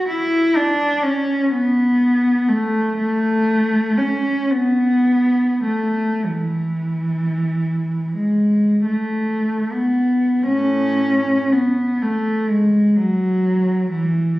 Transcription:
0.09 E4
0.57 D4
1.02 C#4
1.52 B3
2.49 A3
2.97 A3
3.98 C#4
4.51 B3
5.64 A3
6.25 E3
8.15 G#3
8.85 A3
9.72 B3
10.45 A2 C#4
11.52 B3
12.02 A3
12.50 G#3
12.97 F#3
13.90 E3

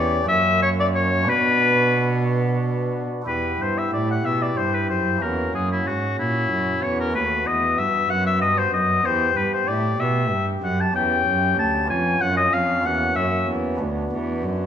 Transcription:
Already playing: E2 C#4 G4 D5
0.24 F#2 A#3 C#4 F#4
0.28 F#2 E5
0.62 C#5
0.80 D5
0.95 C#5
1.23 B3 D4 F#4
1.27 B2 B4
3.23 E2 B3 E4 G4
3.27 E2 B4
3.59 G2 C5
3.78 E5
3.91 A2 D5
4.11 F#5
4.24 B2 E5
4.42 D5
4.57 G2 C5
4.74 B4
4.89 F#2 C5
5.18 E2 A#3 C#4 F#4 A#4
5.22 E2
5.53 F#2 G#4
5.72 E4
5.86 G#2 F#4
6.18 A#2 E4
6.50 F#2
6.82 E2 C#5
7.00 A#4
7.11 D#2 A3 B3 F#4 B4
7.16 D#2
7.47 E2 D#5
7.78 G2 E5
8.09 F#2 F#5
8.26 E5
8.41 G2 D#5
8.58 C5
8.72 F#2 D#5
9.04 E2 B3 G4 C5
9.36 G2 B4
9.53 C5
9.67 A2 D5
9.98 B2 E5
10.30 G2
10.62 F#2 F#5
10.80 A5
10.92 E2 C#4 G4 G5
11.27 F#2
11.58 D2 A5
11.85 B3 C#4 F4
11.89 F2 G#5
12.21 F#2 F#5
12.37 D#5
12.53 F2 F5
12.82 E2 A#3 C#4 F#4 F#5
12.86 E2
13.16 F#2 E5
13.48 E2
13.76 D2 B3 D4 F#4
13.80 D2
14.12 E2
14.44 F#2

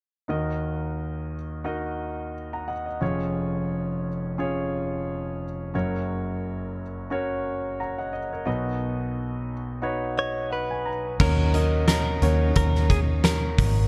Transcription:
0.28 D#2 D#3 D#4 F#4 A#4 D#5
1.64 D#4 F#4 A#4 D#5
2.53 F#5 A#5
2.68 D#5 F#5
2.86 D#5
3.01 F1 F2 C#4 F4 G#4 C#5
4.38 C#4 F4 G#4 C#5
5.74 F#1 F#2 C#4 F#4 A#4 C#5
7.10 C#4 F#4 A#4 C#5
7.80 F#5 A#5
7.98 D#5 F#5
8.13 D#5
8.33 A#4 C#5
8.45 B1 B2 D#4 F#4 B4 D#5
9.82 D#4 F#4 B4 C#5
10.17 C#5 D#5
10.51 B4 F#5
10.71 G#5
10.86 A#5
11.20 D#2 A#2 C#3 D#3 F#3 C#4 D#4 F#4 A#4 C#5, kick, crash
11.53 C#4 D#4 F#4 A#4 D#5, closed hi-hat
11.88 A#4, snare, closed hi-hat
12.22 D#2 C#4 D#4 F#4 A#4 C#5, closed hi-hat
12.55 D#2 A#4, kick, closed hi-hat
12.75 snare
12.90 G#4, kick, closed hi-hat
13.24 A#4, snare, closed hi-hat
13.58 G#1, kick, open hi-hat

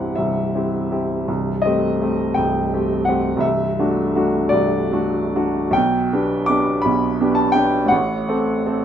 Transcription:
Already playing: C1 C2 C4 E4 G4 F#5
0.15 C1 C2 E5
0.55 C4 E4 G4
0.91 C4 E4 G4
1.28 C1 C2
1.62 A3 C4 D#5
1.66 G4
2.01 A3 C4 G4
2.34 C1 C2 G5
2.73 A3 C4 G4
3.05 A3 C4 G4 F#5
3.37 C1 C2 E5
3.79 A3 D4 F#4
4.16 A3 D4 F#4
4.49 C1 C2 D5
4.92 A3 D4 F#4
5.35 A3 D4 F#4
5.71 B1 G5
5.76 B2
6.13 B3 D4 G4
6.46 B3 D4 G4 D6
6.82 B1 B2 B5
7.21 B3 D4 G4
7.35 A5
7.52 B3 D4 G4 G5
7.86 A2 F#5
7.91 A1
8.29 C4 A4
8.66 C4 A4

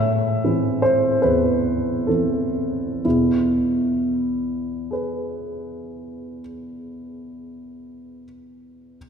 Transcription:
Already playing: A2 E5
0.44 E3 C4 E4
0.82 C5
1.22 E2 B4
2.07 E3 C4 E4 A4
3.05 E2 B2 E4
4.91 G#4 B4

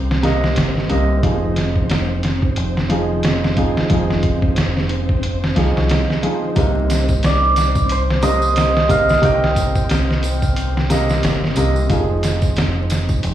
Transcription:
Already playing: C2 C3 A#3 C4 C5 D#5
0.11 snare
0.23 C3 A#3 D#5, snare, closed hi-hat
0.44 snare
0.56 G1, snare, closed hi-hat
0.77 snare
0.90 C2 C3 A#3 D#5, closed hi-hat
1.23 F1 F3 D#4 G#4, kick, closed hi-hat
1.56 snare, closed hi-hat
1.76 kick
1.90 snare, closed hi-hat
2.23 snare, closed hi-hat
2.42 kick
2.56 F1, closed hi-hat
2.77 snare
2.90 F3 D#4 G#4, closed hi-hat
3.23 snare, closed hi-hat
3.44 snare
3.56 F3 D#4 G#4, kick, closed hi-hat
3.77 snare
3.90 F1 F3 D#4 G#4, kick, closed hi-hat
4.10 snare
4.23 kick, closed hi-hat
4.42 kick
4.56 snare, closed hi-hat
4.77 snare
4.89 closed hi-hat
5.09 kick
5.23 closed hi-hat
5.44 snare
5.56 C2 F3 D#4 G#4, snare, closed hi-hat
5.76 C2, snare
5.89 snare, closed hi-hat
6.10 snare
6.22 F3 D#4 G#4, closed hi-hat
6.56 C2 C3 A#3 D#4, kick, closed hi-hat, tambourine
6.90 snare, closed hi-hat, tambourine
7.08 kick, tambourine
7.23 D5, snare, closed hi-hat, tambourine
7.56 snare, closed hi-hat, tambourine
7.75 kick, tambourine
7.89 C5, closed hi-hat, tambourine
8.11 snare
8.22 C3 A#3 D#5, closed hi-hat, tambourine
8.42 tambourine
8.56 snare, closed hi-hat, tambourine
8.77 snare
8.89 C3 A#3 D#5 F5, kick, closed hi-hat, tambourine
9.09 snare, tambourine
9.22 C2 C3 A#3 D#5 G5, kick, closed hi-hat, tambourine
9.44 snare
9.56 kick, closed hi-hat, tambourine
9.75 kick, tambourine
9.89 snare, closed hi-hat, tambourine
10.11 snare
10.23 closed hi-hat, tambourine
10.42 kick, tambourine
10.56 closed hi-hat, tambourine
10.77 snare
10.90 C3 A#3 D#5, snare, closed hi-hat, tambourine
11.09 snare, tambourine
11.23 G1, snare, closed hi-hat, tambourine
11.44 snare
11.56 C2 C3 A#3 D#5, closed hi-hat, tambourine
11.76 tambourine
11.89 F1 F3 D#4 G#4, kick, closed hi-hat, tambourine
12.23 snare, closed hi-hat, tambourine
12.42 kick, tambourine
12.56 snare, closed hi-hat, tambourine
12.90 snare, closed hi-hat, tambourine
13.09 kick, tambourine
13.23 F1, closed hi-hat, tambourine

